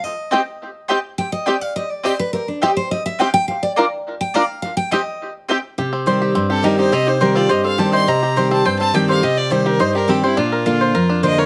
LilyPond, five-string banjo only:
\new Staff \with { instrumentName = "Five-string banjo" } { \time 4/4 \key c \dorian \tempo 4 = 209 r4 <c' g'>8 r4. <c' g'>8 r8 | r4 <c' g'>8 r4. <c' g'>8 r8 | r4 <c' g'>8 r4. <c' g'>8 r8 | r4 <d' f' bes'>8 r4. <d' f' bes'>8 r8 |
r4 <c' g'>8 r4. <c' g'>8 r8 | g'8 c'8 c''8 g'8 c'8 g'8 g'8 g'8 | c'8 g'8 c''8 c'8 c''8 c'8 g'8 c''8 | c'8 g'8 c''8 c'8 c''8 c'8 g'8 c''8 |
g'4 g'8 g'8 c''8 g'8 c'8 c''8 | d'8 bes'8 f'8 c''8 bes'8 d'8 c''8 bes'8 | }